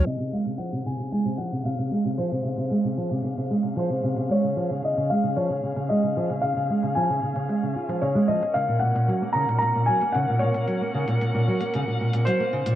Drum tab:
HH |o-----o-o-----o-o-----o-o------o|o-----o-o-----o-o-----o-o-----o-|o-----o-o-----o-o-----o-o-----o-|o-----o-o-----o-o-----o-o-----o-|

HH |o-----o-o-----o-o-----o-o-----o-|o-----o-o-----o-o-----o-o-----o-|